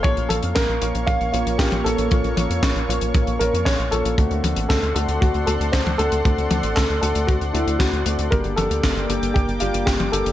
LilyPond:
<<
  \new Staff \with { instrumentName = "Analog synth pad" } { \time 4/4 \key d \minor \tempo 4 = 116 << { <bes f'' des'''>1~ | <bes f'' des'''>1 | <a' fis'' c'''>1~ | <a' fis'' c'''>1 |
<bes g'' d'''>1 | } \\ { des''1~ | des''1 | d''1~ | d''1~ |
d''1 | } >> }
  \new Staff \with { instrumentName = "Grand piano" } { \time 4/4 \key d \minor des''8 a'8 bes'4 f''8 f'8 g'8 a'8~ | a'2~ a'8 bes'8 des''8 a'8~ | a'4 a'8 a'8 fis'8 a'8 c''8 a'8~ | a'4 a'8 a'8 fis'8 e'8 fis'4 |
bes'8 a'4. g'8 f'8 g'8 a'8 | }
  \new Staff \with { instrumentName = "Grand piano" } { \time 4/4 \key d \minor <f bes des' f'>4. <f bes des' f'>4 <f bes des' f'>4 <f bes des' f'>8 | <f bes des' f'>4. <f bes des' f'>4 <f bes des' f'>4 <f bes des' f'>8 | <a c' d' fis'>4. <a c' d' fis'>4 <a c' d' fis'>4 <a c' d' fis'>8 | <a c' d' fis'>4. <a c' d' fis'>4 <a c' d' fis'>4 <a c' d' fis'>8 |
<g bes d' g'>4. <g bes d' g'>4 <g bes d' g'>4 <g bes d' g'>8 | }
  \new Staff \with { instrumentName = "Analog synth bass" } { \clef bass \time 4/4 \key d \minor bes,,16 bes,,16 bes,,16 f,16 bes,,16 bes,,16 bes,,16 bes,,16 bes,,16 bes,,16 bes,,16 bes,,16 bes,,16 bes,,16 bes,,16 bes,,16 | bes,,16 bes,,16 bes,,16 f,16 bes,,16 bes,,16 bes,,16 bes,,16 bes,,16 bes,,16 bes,,16 f,16 bes,,16 bes,,16 bes,,16 bes,,16 | d,16 d,16 d,16 a,,16 d,16 d,16 d,16 d,16 d,16 d,16 d,16 d,16 d,16 d,16 d,16 d,16 | d,16 d,16 d,16 a,,16 d,16 d,16 d,16 d,16 d,16 d,16 d,16 d,16 d,16 d,16 d,16 d,16 |
g,,16 g,,16 g,,16 d,16 g,,16 g,,16 g,,16 g,,16 g,,16 g,,16 g,,16 g,,16 g,,16 g,,16 g,,16 g,,16 | }
  \new DrumStaff \with { instrumentName = "Drums" } \drummode { \time 4/4 <hh bd>16 hh16 <hh tommh>16 hh16 <hc hh bd sn>16 hh16 hh16 hh16 <hh bd>16 hh16 hh16 hh16 <hc hh bd sn>16 <hh tommh>16 hh16 hh16 | <hh bd>16 hh16 <hh tommh>16 hh16 <hc hh bd sn>16 hh16 hh16 hh16 <hh bd>16 hh16 hh16 hh16 <hc hh bd sn>16 hh16 hh16 hh16 | <hh bd>16 hh16 <hh tommh>16 hh16 <hc hh bd sn>16 hh16 hh16 hh16 <hh bd>16 hh16 hh16 hh16 <hc hh bd sn>16 <hh tommh>16 hh16 hh16 | <hh bd>16 hh16 <hh tommh>16 hh16 <hc hh bd sn>16 hh16 hh16 hh16 <hh bd>16 hh16 hh16 hh16 <hc hh bd sn>16 hh16 hh16 hh16 |
<hh bd>16 hh16 <hh tommh>16 hh16 <hc hh bd sn>16 hh16 hh16 hh16 <hh bd>16 hh16 hh16 hh16 <hc hh bd sn>16 <hh tommh>16 hh16 hh16 | }
>>